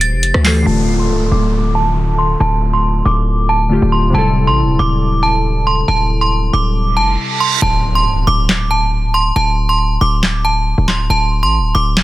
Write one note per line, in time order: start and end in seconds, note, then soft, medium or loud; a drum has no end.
0.00 0.14 D1 loud
0.00 0.39 E3 medium
0.00 0.40 A3 medium
0.00 0.41 G4 medium
0.00 0.43 C5 medium
0.00 0.42 A6 medium
0.00 closed hi-hat medium
0.13 0.33 F1 loud
0.23 closed hi-hat medium
0.34 0.65 D2 loud
0.34 cross-stick loud
0.43 0.66 E3 medium
0.43 0.64 A3 soft
0.43 0.67 G4 soft
0.43 0.64 C7 medium
0.43 snare medium
0.43 clap medium
0.43 open hi-hat medium
0.47 0.68 A4 medium
0.63 1.11 D1 loud
0.63 3.65 D3 medium
0.63 3.66 A3 medium
0.63 0.98 A5 medium
0.63 downlifter medium
0.68 3.68 F4 medium
0.68 3.69 A4 medium
1.00 1.30 C6 medium
1.10 1.23 C1 loud
1.21 1.31 D1 medium
1.31 2.36 D1 loud
1.31 1.72 D6 medium
1.75 2.16 A5 medium
2.18 2.37 C6 medium
2.40 3.03 D1 loud
2.40 2.72 A5 loud
2.73 3.04 C6 medium
3.05 3.79 D1 loud
3.05 3.46 D6 medium
3.49 3.90 A5 medium
3.69 4.13 D3 soft
3.69 4.14 A3 soft
3.69 4.15 F4 soft
3.73 4.15 G4 medium
3.82 4.13 D1 loud
3.92 4.11 C6 medium
4.10 7.56 C3 medium
4.10 7.57 G3 medium
4.14 4.49 D1 loud
4.14 7.59 E4 medium
4.14 7.60 A4 medium
4.14 4.46 A5 medium
4.47 4.65 A1 loud
4.47 4.77 C6 medium
4.63 4.79 D1 loud
4.79 5.84 D1 loud
4.79 5.20 D6 medium
5.23 5.64 A5 medium
5.67 5.85 C6 medium
5.88 6.51 D1 loud
5.88 6.19 A5 medium
6.21 6.51 C6 medium
6.53 6.98 D1 loud
6.53 6.94 D6 medium
6.75 reverse cymbal medium
6.97 7.17 F1 medium
6.97 7.38 A5 medium
7.40 7.59 C6 medium
7.62 8.07 D1 loud
7.62 7.93 A5 medium
7.62 impact medium
7.95 8.25 C6 medium
8.05 8.19 C1 loud
8.17 8.27 D1 loud
8.27 9.32 D1 loud
8.27 8.68 D6 medium
8.49 snare loud
8.49 clap medium
8.71 9.12 A5 medium
9.14 9.33 C6 medium
9.36 9.99 D1 loud
9.36 9.67 A5 loud
9.69 9.99 C6 medium
10.01 10.75 D1 loud
10.01 10.42 D6 medium
10.23 snare loud
10.23 clap medium
10.45 10.85 A5 medium
10.78 11.09 D1 loud
10.88 11.07 C6 medium
10.88 snare medium
10.88 clap medium
11.10 11.45 D1 loud
11.10 11.41 A5 medium
11.43 11.61 A1 loud
11.43 11.73 C6 medium
11.59 11.74 D1 loud
11.75 12.03 D1 loud
11.75 12.03 D6 medium
11.97 snare loud
11.97 clap medium